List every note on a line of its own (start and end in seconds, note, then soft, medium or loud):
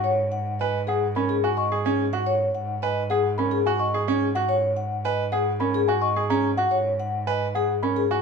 0.00 8.22 G#2 medium
0.00 0.23 C#5 medium
0.32 0.50 F#5 medium
0.59 0.79 B4 medium
0.59 0.78 D#5 medium
0.59 0.79 G#5 medium
0.87 1.06 G#4 medium
0.87 1.06 F#5 medium
1.15 1.34 C#4 medium
1.15 1.34 A#4 medium
1.15 1.34 B5 medium
1.29 1.48 G#4 medium
1.44 1.62 F#4 medium
1.44 1.62 G#5 medium
1.57 1.76 D#5 medium
1.57 1.76 C#6 medium
1.72 1.90 G#4 medium
1.85 2.04 C#4 medium
1.85 2.03 G#4 medium
2.13 2.31 F#4 medium
2.13 2.31 F#5 medium
2.26 2.45 C#5 medium
2.54 2.73 F#5 medium
2.82 3.01 B4 medium
2.82 3.01 D#5 medium
2.82 3.01 G#5 medium
3.10 3.28 G#4 medium
3.10 3.29 G#4 medium
3.10 3.28 F#5 medium
3.38 3.56 C#4 medium
3.38 3.56 A#4 medium
3.38 3.56 B5 medium
3.51 3.70 G#4 medium
3.66 3.84 F#4 medium
3.66 3.84 G#5 medium
3.79 3.98 D#5 medium
3.79 3.98 C#6 medium
3.94 4.12 G#4 medium
4.08 4.26 C#4 medium
4.08 4.26 G#4 medium
4.35 4.54 F#4 medium
4.35 4.53 F#5 medium
4.35 4.54 F#5 medium
4.49 4.67 C#5 medium
4.77 4.95 F#5 medium
5.05 5.23 B4 medium
5.05 5.23 D#5 medium
5.05 5.23 G#5 medium
5.32 5.51 G#4 medium
5.32 5.51 F#5 medium
5.60 5.79 C#4 medium
5.60 5.78 A#4 medium
5.60 5.78 B5 medium
5.74 5.92 G#4 medium
5.88 6.06 F#4 medium
5.88 6.06 G#5 medium
6.01 6.20 D#5 medium
6.01 6.20 C#6 medium
6.16 6.34 G#4 medium
6.30 6.48 C#4 medium
6.30 6.48 G#4 medium
6.30 6.48 A#5 medium
6.57 6.76 F#4 medium
6.57 6.76 F#5 medium
6.71 6.90 C#5 medium
7.00 7.18 F#5 medium
7.27 7.45 B4 medium
7.27 7.45 D#5 medium
7.27 7.45 G#5 medium
7.55 7.73 G#4 medium
7.55 7.73 F#5 medium
7.83 8.01 C#4 medium
7.83 8.01 A#4 medium
7.83 8.01 B5 medium
7.96 8.15 G#4 medium
8.11 8.22 F#4 medium
8.11 8.22 G#5 medium